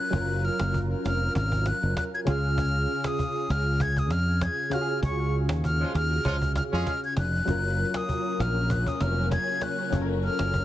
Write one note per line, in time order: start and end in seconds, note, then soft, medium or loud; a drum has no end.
0.00 0.14 A#4 medium
0.00 0.46 F#6 loud
0.11 0.48 F#1 loud
0.11 2.22 F#3 medium
0.11 2.23 C#4 medium
0.11 2.24 F4 medium
0.11 cajon bass loud
0.16 2.25 A#4 medium
0.45 0.79 F6 loud
0.60 0.93 F#1 loud
0.60 cajon slap loud
0.74 cajon bass medium
0.91 cajon slap soft
1.05 1.28 F1 loud
1.05 1.34 F6 loud
1.05 cajon slap medium
1.22 cajon slap soft
1.35 1.70 G#1 medium
1.35 1.69 F6 loud
1.35 cajon bass loud
1.52 cajon bass medium
1.66 1.97 F#6 loud
1.66 cajon slap loud
1.82 1.93 F#1 medium
1.82 cajon slap soft
1.97 2.04 F#6 loud
1.97 cajon bass loud
1.97 cajon slap loud
2.13 2.20 G#6 loud
2.13 cajon slap soft
2.25 2.85 C#2 loud
2.25 4.67 C#3 medium
2.25 4.68 C#4 medium
2.25 4.69 F4 medium
2.25 3.08 F6 loud
2.25 cajon slap loud
2.30 4.70 G#4 medium
2.58 cajon bass loud
3.04 3.52 D#6 loud
3.04 cajon slap loud
3.19 cajon bass medium
3.36 cajon slap soft
3.50 4.11 C#2 medium
3.50 3.83 F6 loud
3.50 cajon slap medium
3.67 cajon slap soft
3.80 4.00 G#6 loud
3.80 cajon bass loud
3.97 4.13 D#6 loud
3.97 cajon bass medium
4.11 4.46 F2 medium
4.11 4.44 F6 loud
4.11 cajon slap loud
4.41 4.75 G#6 loud
4.41 cajon bass loud
4.41 cajon slap loud
4.58 cajon slap soft
4.70 7.12 C#3 medium
4.70 7.13 C#4 medium
4.70 7.14 F4 medium
4.70 5.03 F6 loud
4.70 cajon slap loud
4.75 4.81 F#4 medium
4.81 7.18 G#4 medium
4.89 cajon slap soft
5.03 5.50 C#2 loud
5.03 5.36 C#6 loud
5.03 cajon bass loud
5.32 cajon slap soft
5.49 5.83 D#2 medium
5.49 cajon bass medium
5.49 cajon slap loud
5.64 5.93 F6 loud
5.64 cajon bass loud
5.81 5.93 F3 medium
5.81 5.93 G#3 medium
5.81 5.93 C#4 medium
5.81 5.93 F4 medium
5.94 6.17 D#2 loud
5.94 6.52 F6 loud
5.94 cajon slap medium
6.12 cajon slap soft
6.25 6.60 C#2 loud
6.25 6.36 F3 loud
6.25 6.36 G#3 loud
6.25 6.36 C#4 loud
6.25 6.36 F4 loud
6.25 cajon bass loud
6.42 cajon bass medium
6.56 6.64 F6 loud
6.56 cajon bass medium
6.56 cajon slap medium
6.72 6.83 F2 medium
6.72 6.92 G#3 loud
6.72 6.92 C#4 medium
6.72 6.92 F4 medium
6.72 6.92 G#4 loud
6.72 cajon slap soft
6.86 7.03 F6 loud
6.86 cajon bass loud
6.86 cajon slap loud
7.03 7.17 G#6 loud
7.03 cajon slap soft
7.17 7.40 F1 medium
7.17 7.98 F#6 loud
7.17 cajon slap loud
7.35 cajon slap soft
7.45 7.83 F#1 loud
7.45 10.65 C#3 medium
7.45 9.87 F#3 medium
7.45 10.65 F#3 medium
7.45 10.65 A#3 medium
7.45 9.88 C#4 medium
7.45 10.65 C#4 medium
7.45 9.89 F4 medium
7.45 cajon bass loud
7.50 9.90 A#4 medium
7.94 8.42 D#6 loud
7.94 cajon slap loud
8.09 cajon bass medium
8.25 cajon slap soft
8.40 8.85 A#1 loud
8.40 8.73 F6 loud
8.40 cajon slap loud
8.57 cajon slap soft
8.70 8.90 F#6 loud
8.70 cajon bass loud
8.87 9.03 D#6 medium
8.87 cajon bass medium
9.01 9.36 F1 loud
9.01 9.32 F6 loud
9.01 cajon slap loud
9.17 cajon slap soft
9.31 9.65 G#6 loud
9.31 cajon bass loud
9.31 cajon slap loud
9.48 cajon slap soft
9.61 9.97 F#6 loud
9.61 cajon slap loud
9.79 cajon slap soft
9.90 10.28 F#1 loud
9.90 10.65 F#3 medium
9.90 10.65 C#4 medium
9.90 10.65 F4 medium
9.90 cajon bass loud
9.95 10.01 A4 medium
10.02 10.65 A#4 medium
10.09 cajon slap soft
10.24 10.65 F6 loud
10.39 10.65 F#1 loud
10.39 cajon slap loud
10.54 cajon bass medium